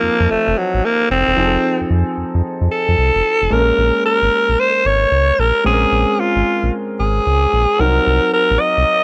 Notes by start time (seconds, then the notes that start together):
Already playing: F3 A#3 C4 D#4 A4
0.03 F2
0.20 F2
0.30 F1 A3
0.47 F1
0.58 F#3
0.74 A1
0.85 A#3
1.10 F1 C4
1.27 E1
1.36 F1 F3 C4 D#4 G#4
1.45 A4
1.81 F2
1.90 F2
2.17 F2
2.35 F2
2.61 F2
2.71 A4
2.88 F2
2.98 C2
3.15 F1
3.42 F1
3.50 A#1 G#3 A#3 C#4 A4 A#4
3.59 A#4
3.78 A#1
4.05 A#4
4.22 G#1
4.49 A#1
4.60 C5
4.85 G#1 C#5
5.11 C#2
5.39 A#1 A#4
5.64 A#1 G#3 C4 C#4 G#4
5.73 A#4
5.92 A#1
6.20 F4
6.36 G#1
6.63 A#1
6.99 G#1 G#4
7.26 C#2
7.53 A#1
7.79 C2 F#3 C4 D#4 A#4
8.07 C2
8.33 A#4
8.51 A#1
8.60 D#5
8.77 C2